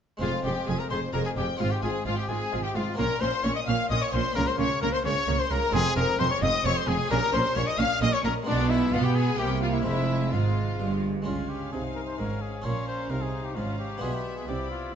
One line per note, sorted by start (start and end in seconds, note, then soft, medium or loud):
0.17 0.29 F2 medium
0.17 1.54 G#3 soft
0.17 1.54 C4 soft
0.17 1.55 F4 soft
0.17 0.43 F5 medium
0.21 0.29 F1 medium
0.21 0.42 F2 medium
0.21 0.32 F4 medium
0.21 0.43 F4 medium
0.21 0.30 G#4 medium
0.44 0.53 F1 medium
0.44 0.65 F2 medium
0.44 0.53 F2 medium
0.44 0.67 G4 medium
0.44 0.53 G#4 medium
0.44 0.67 G5 medium
0.68 0.76 F1 medium
0.68 0.88 F2 medium
0.68 0.76 F2 medium
0.68 0.76 G#4 medium
0.68 0.79 G#4 medium
0.68 0.80 G#4 medium
0.68 0.79 G#5 loud
0.79 0.90 A#4 medium
0.79 0.91 A#4 medium
0.79 0.84 A#5 medium
0.90 0.99 F1 medium
0.90 0.99 F2 medium
0.90 1.11 F2 medium
0.90 0.99 G#4 medium
0.90 1.01 C5 medium
0.90 1.13 C5 medium
0.90 0.98 C6 medium
1.13 1.22 F1 medium
1.13 1.22 F2 medium
1.13 1.35 F2 medium
1.13 1.22 G#4 medium
1.13 1.19 A#4 medium
1.13 1.25 A#4 medium
1.13 1.18 A#5 loud
1.25 1.30 G#4 medium
1.25 1.30 G#5 medium
1.36 1.45 F1 medium
1.36 1.57 F2 medium
1.36 1.45 F2 medium
1.36 1.47 G4 medium
1.36 1.46 G4 medium
1.36 1.45 G#4 medium
1.36 1.59 G5 medium
1.57 1.68 G#1 medium
1.57 1.80 G#2 medium
1.57 1.68 G#2 medium
1.57 2.93 C4 soft
1.57 2.94 F4 soft
1.57 1.73 F4 medium
1.57 1.68 F4 medium
1.57 1.71 F4 medium
1.57 1.71 F5 loud
1.71 1.82 G4 medium
1.71 1.83 G4 medium
1.71 1.76 G5 medium
1.82 1.91 G#1 medium
1.82 2.04 G#2 medium
1.82 1.91 G#2 medium
1.82 1.91 F4 medium
1.82 2.06 G#4 medium
1.82 1.90 G#5 medium
2.05 2.14 G#1 medium
2.05 2.27 G#2 medium
2.05 2.14 G#2 medium
2.05 2.14 F4 medium
2.05 2.17 F4 medium
2.05 2.18 F4 medium
2.05 2.17 F5 medium
2.17 2.30 G4 medium
2.17 2.29 G4 medium
2.17 2.29 G5 medium
2.29 2.37 G#1 medium
2.29 2.50 G#2 medium
2.29 2.37 G#2 medium
2.29 2.37 F4 medium
2.29 2.65 G#4 medium
2.29 2.63 G#4 medium
2.29 2.63 G#5 medium
2.52 2.61 G#1 medium
2.52 2.73 G#2 medium
2.52 2.61 G#2 medium
2.52 2.60 F4 medium
2.63 2.77 G4 medium
2.63 2.75 G4 medium
2.63 2.68 G5 medium
2.75 2.83 G#1 medium
2.75 2.96 G#2 medium
2.75 2.84 G#2 medium
2.75 2.83 F4 medium
2.75 2.97 F4 medium
2.75 2.98 F4 medium
2.75 2.83 F5 medium
2.94 4.30 A#3 medium
2.94 4.31 C#4 soft
2.94 4.31 F4 medium
2.94 3.21 A#4 medium
2.94 3.21 A#5 loud
2.98 3.07 A#1 medium
2.98 3.06 A#2 medium
2.98 3.19 A#2 medium
2.98 3.06 C#4 medium
2.98 3.22 A#4 medium
3.21 3.29 A#1 medium
3.21 3.29 A#2 medium
3.21 3.42 A#2 medium
3.21 3.30 C#4 medium
3.21 3.44 C5 medium
3.21 3.45 C5 medium
3.21 3.44 C6 medium
3.44 3.52 A#1 medium
3.44 3.52 A#2 medium
3.44 3.66 A#2 medium
3.44 3.53 C#4 medium
3.44 3.56 C#5 medium
3.44 3.55 C#5 medium
3.44 3.56 C#6 loud
3.55 3.67 D#5 medium
3.55 3.61 D#5 medium
3.55 3.68 D#6 loud
3.67 3.76 A#1 medium
3.67 3.75 A#2 medium
3.67 3.89 A#2 medium
3.67 3.76 C#4 medium
3.67 3.89 F5 medium
3.67 3.90 F5 medium
3.67 3.76 F6 loud
3.90 3.98 A#1 medium
3.90 3.98 A#2 medium
3.90 4.11 A#2 medium
3.90 3.99 C#4 medium
3.90 4.01 D#5 medium
3.90 4.03 D#5 medium
3.90 4.02 D#6 loud
4.01 4.13 C#5 medium
4.01 4.14 C#5 medium
4.01 4.13 C#6 loud
4.13 4.22 A#1 medium
4.13 4.21 A#2 medium
4.13 4.34 A#2 medium
4.13 4.22 C#4 medium
4.13 4.35 C5 medium
4.13 4.36 C5 medium
4.13 4.36 C6 loud
4.32 5.68 A#3 medium
4.32 5.68 C#4 medium
4.32 5.69 F4 medium
4.32 4.49 A#4 loud
4.32 4.48 A#5 loud
4.36 4.44 C#2 medium
4.36 4.44 C#3 medium
4.36 4.57 C#3 medium
4.36 4.45 A#3 medium
4.36 4.48 A#4 medium
4.47 4.58 C5 medium
4.47 4.52 C5 medium
4.47 4.59 C6 medium
4.58 4.67 C#2 medium
4.58 4.67 C#3 medium
4.58 4.80 C#3 medium
4.58 4.67 A#3 medium
4.58 4.81 C#5 medium
4.58 4.82 C#5 medium
4.58 4.82 C#6 loud
4.82 4.90 C#2 medium
4.82 4.90 C#3 medium
4.82 5.03 C#3 medium
4.82 4.90 A#3 medium
4.82 4.95 A#4 medium
4.82 4.93 A#4 loud
4.82 4.87 A#5 loud
4.93 5.04 C5 medium
4.93 5.05 C5 medium
4.93 4.99 C6 loud
5.04 5.13 C#2 medium
5.04 5.12 C#3 medium
5.04 5.26 C#3 medium
5.04 5.13 A#3 medium
5.04 5.38 C#5 medium
5.04 5.41 C#5 loud
5.04 5.39 C#6 loud
5.27 5.35 C#2 medium
5.27 5.36 C#3 medium
5.27 5.49 C#3 medium
5.27 5.36 A#3 medium
5.38 5.50 C5 medium
5.38 5.52 C5 medium
5.38 5.51 C6 loud
5.50 5.59 C#2 medium
5.50 5.71 C#3 medium
5.50 5.59 C#3 medium
5.50 5.59 A#3 medium
5.50 5.73 A#4 medium
5.50 5.75 A#4 medium
5.50 5.74 A#5 loud
5.69 7.04 G#3 medium
5.69 7.05 C4 medium
5.69 7.06 F4 medium
5.69 5.96 G#4 loud
5.73 5.82 F1 medium
5.73 5.81 F2 medium
5.73 5.94 F2 medium
5.73 5.82 C4 medium
5.73 5.96 G#4 loud
5.73 5.96 G#5 loud
5.96 6.04 F1 medium
5.96 6.04 F2 medium
5.96 6.17 F2 medium
5.96 6.04 C4 medium
5.96 6.19 A#4 medium
5.96 6.21 A#4 loud
5.96 6.19 A#5 loud
6.19 6.27 F1 medium
6.19 6.27 F2 medium
6.19 6.40 F2 medium
6.19 6.27 C4 medium
6.19 6.24 C5 loud
6.19 6.30 C5 medium
6.19 6.30 C6 loud
6.31 6.44 C#5 medium
6.31 6.42 C#5 medium
6.31 6.42 C#6 loud
6.42 6.50 F1 medium
6.42 6.50 F2 medium
6.42 6.63 F2 medium
6.42 6.50 C4 medium
6.42 6.67 D#5 loud
6.42 6.65 D#5 medium
6.42 6.65 D#6 loud
6.65 6.73 F1 medium
6.65 6.73 F2 medium
6.65 6.86 F2 medium
6.65 6.73 C4 medium
6.65 6.76 C#5 loud
6.65 6.79 C#5 medium
6.65 6.76 C#6 loud
6.77 6.88 C5 medium
6.77 6.89 C5 medium
6.77 6.88 C6 loud
6.88 6.96 F1 medium
6.88 6.96 F2 medium
6.88 7.08 F2 medium
6.88 6.96 C4 medium
6.88 7.10 G#4 medium
6.88 7.11 G#5 loud
7.08 7.18 A#1 loud
7.08 7.18 A#2 medium
7.08 7.31 A#2 medium
7.08 8.42 C#4 medium
7.08 7.19 C#4 medium
7.08 8.43 G4 medium
7.08 7.32 A#4 loud
7.08 7.34 A#4 loud
7.08 7.33 A#5 loud
7.33 7.41 A#1 medium
7.33 7.41 A#2 medium
7.33 7.54 A#2 medium
7.33 7.41 C#4 medium
7.33 7.56 C5 medium
7.33 7.58 C5 medium
7.33 7.56 C6 loud
7.56 7.64 A#1 medium
7.56 7.64 A#2 medium
7.56 7.77 A#2 medium
7.56 7.64 C#4 medium
7.56 7.67 C#5 loud
7.56 7.69 C#5 medium
7.56 7.67 C#6 loud
7.67 7.80 D#5 medium
7.67 7.79 D#5 medium
7.67 7.79 D#6 loud
7.79 7.87 A#1 medium
7.79 7.87 A#2 medium
7.79 7.99 A#2 medium
7.79 7.87 C#4 medium
7.79 8.01 F5 loud
7.79 8.02 F5 loud
7.79 8.02 F6 loud
8.01 8.09 A#1 medium
8.01 8.10 A#2 medium
8.01 8.22 A#2 medium
8.01 8.10 C#4 medium
8.01 8.15 D#5 loud
8.01 8.13 D#5 loud
8.01 8.13 D#6 loud
8.13 8.18 C#5 medium
8.13 8.24 C#5 medium
8.13 8.25 C#6 loud
8.24 8.32 A#1 medium
8.24 8.32 A#2 medium
8.24 8.45 A#2 medium
8.24 8.32 C#4 medium
8.24 8.32 A#4 medium
8.24 8.35 A#4 medium
8.24 8.32 A#5 loud
8.43 9.34 G#3 medium
8.43 8.92 B3 medium
8.43 9.36 F4 medium
8.47 8.90 B1 medium
8.47 8.90 B2 medium
8.47 8.89 B2 medium
8.47 8.90 B3 medium
8.47 8.70 D4 medium
8.47 8.71 D4 medium
8.47 8.70 D5 loud
8.70 8.94 E4 medium
8.70 8.93 E4 medium
8.70 8.93 E5 medium
8.93 9.39 B2 medium
8.93 9.39 B3 medium
8.93 9.38 B3 medium
8.93 9.36 B3 medium
8.93 9.06 F4 medium
8.93 9.04 F4 medium
8.93 9.05 F5 loud
9.04 9.16 G4 medium
9.04 9.17 G4 medium
9.04 9.16 G5 medium
9.15 9.38 G#4 medium
9.15 9.39 G#4 medium
9.15 9.39 G#5 medium
9.37 9.85 C2 medium
9.37 9.85 C3 medium
9.37 9.82 C3 medium
9.37 9.83 A#3 medium
9.37 9.86 A#3 medium
9.37 9.84 E4 medium
9.37 9.49 G4 medium
9.37 9.62 G4 medium
9.37 9.62 G5 loud
9.62 9.67 F4 medium
9.62 9.74 F4 medium
9.62 9.74 F5 medium
9.73 9.83 E4 medium
9.73 9.85 E4 medium
9.73 9.84 E5 medium
9.82 10.75 G#3 soft
9.82 10.75 C4 soft
9.82 10.31 E4 medium
9.82 10.34 E4 medium
9.86 10.32 F1 medium
9.86 10.29 F2 medium
9.86 10.32 F2 medium
9.86 10.32 G#3 medium
9.86 10.32 E5 medium
10.32 10.80 G#1 medium
10.32 10.80 G#2 medium
10.32 10.76 G#2 medium
10.32 11.05 G#3 medium
10.32 11.03 F4 medium
10.32 11.03 F5 medium
10.80 11.26 G1 medium
10.80 11.23 G2 medium
10.80 11.26 G2 medium
11.22 11.69 G#3 soft
11.22 12.60 C#4 soft
11.22 12.60 F4 soft
11.22 11.51 F4 medium
11.22 12.61 G#5 soft
11.27 11.70 C#2 soft
11.27 11.70 C#3 medium
11.27 11.69 C#3 soft
11.27 11.70 C#4 soft
11.27 12.61 F5 soft
11.49 11.72 G4 medium
11.72 12.16 C2 soft
11.72 12.16 C3 soft
11.72 12.15 C3 soft
11.72 12.19 D#4 soft
11.72 11.83 G#4 medium
11.95 12.01 A#4 medium
12.07 12.17 C5 medium
12.18 12.62 G#1 medium
12.18 12.61 G#2 soft
12.18 12.62 G#2 soft
12.18 12.64 C#4 soft
12.18 12.43 A#4 medium
12.41 12.66 G#4 medium
12.62 13.07 A#1 medium
12.62 13.06 A#2 soft
12.62 13.07 A#2 medium
12.62 13.97 C#4 soft
12.62 13.10 C#4 soft
12.62 13.97 F4 soft
12.62 12.87 C#5 medium
12.62 13.54 F5 soft
12.62 13.55 A#5 soft
12.88 13.12 C5 medium
13.10 13.53 C2 medium
13.10 13.52 C3 soft
13.10 13.53 C3 medium
13.10 13.56 D#4 soft
13.10 13.23 A#4 medium
13.22 13.46 G#4 medium
13.45 13.57 G4 medium
13.56 13.99 G#1 medium
13.56 13.99 G#2 soft
13.56 13.98 G#2 soft
13.56 14.02 C#4 soft
13.56 13.78 F4 medium
13.56 14.01 F5 soft
13.56 14.01 A#5 soft
13.79 14.03 G4 medium
13.98 14.95 B3 soft
13.98 14.95 D4 soft
13.98 14.95 F4 soft
14.02 14.45 B1 medium
14.02 14.45 B2 medium
14.02 14.44 B2 soft
14.02 14.48 B3 soft
14.02 14.16 G#4 medium
14.02 14.48 E5 soft
14.02 14.47 B5 soft
14.14 14.38 G4 medium
14.36 14.46 G#4 medium
14.47 14.91 C2 medium
14.47 14.90 C3 soft
14.47 14.91 C3 medium
14.47 14.94 E4 soft
14.47 14.70 G4 medium
14.47 14.95 D5 soft
14.47 14.92 B5 soft
14.71 14.93 F4 medium